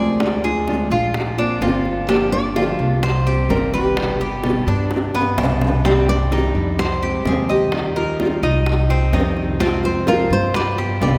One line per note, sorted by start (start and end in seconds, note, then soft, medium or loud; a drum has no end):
0.00 0.84 D2 medium
0.00 0.19 C3 medium
0.00 0.19 F3 medium
0.00 0.19 G#3 medium
0.00 0.20 C4 medium
0.00 0.20 F4 medium
0.00 0.88 G#4 medium
0.00 0.43 D5 medium
0.20 0.43 D3 medium
0.20 0.43 G#3 medium
0.20 0.43 D4 medium
0.20 0.42 F4 medium
0.20 high bongo medium
0.44 0.67 G#3 soft
0.44 0.67 D4 soft
0.44 0.67 F4 soft
0.44 0.90 G#4 medium
0.44 high bongo soft
0.67 0.90 D3 medium
0.67 0.91 G#3 medium
0.67 0.91 D4 medium
0.67 0.90 F4 medium
0.67 high bongo medium
0.90 1.57 A#1 medium
0.90 1.14 G#3 soft
0.90 1.14 D4 soft
0.90 1.14 F4 soft
0.90 1.37 F4 medium
1.14 muted nylon-string guitar stroke medium
1.14 high bongo medium
1.37 1.61 A#3 soft
1.37 1.61 C4 soft
1.37 1.61 D4 medium
1.37 1.60 F4 soft
1.61 2.73 G1 medium
1.61 2.07 D3 medium
1.61 2.08 A#3 medium
1.61 2.08 C4 medium
1.61 2.07 F4 medium
1.61 2.09 F4 medium
1.61 high bongo soft
1.61 low bongo medium
1.85 high bongo soft
2.08 2.31 D3 medium
2.08 2.31 F3 medium
2.08 2.32 A#3 medium
2.08 2.55 D4 medium
2.08 2.32 D4 medium
2.08 2.31 G4 medium
2.08 high bongo medium
2.32 2.55 A#3 soft
2.32 2.55 D4 soft
2.32 2.55 G4 soft
2.32 3.03 D5 loud
2.32 high bongo soft
2.55 2.78 D3 medium
2.55 2.78 F3 medium
2.55 2.79 A#3 medium
2.55 2.79 D4 medium
2.55 3.02 F4 medium
2.55 2.78 G4 medium
2.55 high bongo medium
2.79 3.46 C2 medium
2.79 3.03 A#3 soft
2.79 3.02 D4 soft
2.79 3.02 G4 soft
3.03 3.51 C5 medium
3.03 3.26 C5 medium
3.03 muted nylon-string guitar stroke medium
3.03 high bongo medium
3.26 3.49 G3 soft
3.26 3.49 C4 soft
3.26 3.49 G4 soft
3.26 3.72 G4 medium
3.49 4.61 G1 medium
3.49 3.96 C3 medium
3.49 3.96 D#3 medium
3.49 3.96 G3 medium
3.49 3.96 C4 medium
3.49 3.97 G4 medium
3.49 3.72 A#4 medium
3.49 high bongo soft
3.49 low bongo medium
3.73 4.64 G4 medium
3.73 4.19 B4 medium
3.73 high bongo soft
3.96 4.19 B2 medium
3.96 4.19 D3 medium
3.96 4.20 G3 medium
3.96 4.19 B3 medium
3.96 4.18 G4 medium
3.96 high bongo medium
4.20 4.43 G3 soft
4.20 4.43 B3 soft
4.20 4.43 G4 soft
4.20 4.66 G4 medium
4.20 high bongo soft
4.43 4.66 B2 medium
4.43 4.66 D3 medium
4.43 4.67 G3 medium
4.43 4.66 B3 medium
4.43 4.65 G4 medium
4.43 high bongo medium
4.67 5.34 G2 medium
4.67 4.90 G3 soft
4.67 4.90 B3 soft
4.67 5.13 D4 medium
4.67 4.90 G4 soft
4.90 muted nylon-string guitar stroke medium
4.90 high bongo medium
5.14 5.37 G3 soft
5.14 5.37 B3 soft
5.14 5.37 B3 medium
5.14 5.37 G4 soft
5.14 low bongo medium
5.37 6.49 C2 medium
5.37 5.83 B2 medium
5.37 5.84 D3 medium
5.37 5.84 G3 medium
5.37 5.84 B3 medium
5.37 5.84 D4 medium
5.37 5.85 G4 medium
5.37 low bongo loud
5.61 low bongo medium
5.84 6.07 C3 medium
5.84 6.07 D#3 medium
5.84 6.07 G3 medium
5.84 6.31 C4 medium
5.84 6.07 D4 medium
5.84 6.06 G4 medium
5.84 6.10 G4 medium
5.84 high bongo medium
6.08 6.31 G3 soft
6.08 6.31 D4 soft
6.08 6.31 G4 soft
6.08 6.75 D5 loud
6.08 high bongo soft
6.31 6.54 C3 medium
6.31 6.54 D#3 medium
6.31 6.54 G3 medium
6.31 6.55 D4 medium
6.31 6.78 D#4 medium
6.31 6.54 G4 medium
6.31 high bongo medium
6.55 7.21 F2 medium
6.55 6.78 G3 soft
6.55 6.78 D4 soft
6.55 6.78 G4 soft
6.78 7.02 C5 medium
6.78 7.23 C5 medium
6.78 muted nylon-string guitar stroke medium
6.78 high bongo medium
7.02 7.25 G#3 soft
7.02 7.25 C4 soft
7.02 7.25 G4 soft
7.02 7.48 G4 medium
7.25 8.36 D#2 medium
7.25 7.71 C3 medium
7.25 7.71 F3 medium
7.25 7.72 G#3 medium
7.25 7.72 C4 medium
7.25 7.72 G4 medium
7.25 7.50 G#4 medium
7.25 high bongo soft
7.25 low bongo medium
7.49 8.40 G4 medium
7.49 7.95 D#5 medium
7.49 high bongo soft
7.72 7.95 D#3 medium
7.72 7.95 G3 medium
7.72 7.95 D#4 medium
7.72 7.94 F4 medium
7.72 high bongo medium
7.95 8.19 G3 soft
7.95 8.19 D#4 soft
7.95 8.18 F4 soft
7.95 8.42 A#4 medium
7.95 high bongo soft
8.19 8.42 D#3 medium
8.19 8.42 G3 medium
8.19 8.43 D#4 medium
8.19 8.41 F4 medium
8.19 high bongo medium
8.42 9.09 C2 medium
8.42 8.65 G3 soft
8.42 8.89 D#4 medium
8.42 8.66 D#4 soft
8.42 8.65 F4 soft
8.66 muted nylon-string guitar stroke medium
8.66 high bongo medium
8.89 9.12 G3 soft
8.89 9.13 C4 soft
8.89 9.13 C4 medium
8.89 9.12 G4 soft
9.12 10.24 F2 medium
9.12 9.58 C3 medium
9.12 9.59 D#3 medium
9.12 9.59 G3 medium
9.12 9.60 C4 medium
9.12 9.59 D#4 medium
9.12 9.60 G4 medium
9.12 high bongo soft
9.12 low bongo medium
9.37 high bongo soft
9.59 9.83 C3 medium
9.59 9.83 F3 medium
9.59 9.83 G#3 medium
9.59 10.06 C4 medium
9.59 9.83 C4 medium
9.59 9.85 F4 medium
9.59 9.82 F4 medium
9.59 high bongo medium
9.83 10.06 G#3 soft
9.83 10.07 C4 soft
9.83 10.06 F4 soft
9.83 10.06 C5 medium
9.83 high bongo soft
10.07 10.30 C3 medium
10.07 10.30 F3 medium
10.07 10.30 G#3 medium
10.07 10.30 C4 medium
10.07 10.53 F4 medium
10.07 10.29 F4 medium
10.07 10.30 A#4 loud
10.07 high bongo medium
10.30 10.97 G2 medium
10.30 10.54 G#3 soft
10.30 10.54 C4 soft
10.30 10.53 F4 soft
10.30 10.54 C5 medium
10.54 10.77 B4 medium
10.54 11.01 D5 loud
10.54 muted nylon-string guitar stroke medium
10.54 high bongo medium
10.77 11.00 G3 soft
10.77 11.01 B3 soft
10.77 11.00 G4 soft
10.77 11.18 G4 medium
11.01 11.18 C2 medium
11.01 11.18 B2 medium
11.01 11.18 D3 medium
11.01 11.18 G3 medium
11.01 11.18 B3 medium
11.01 11.18 G4 medium
11.01 11.18 D5 medium
11.01 high bongo soft
11.01 low bongo medium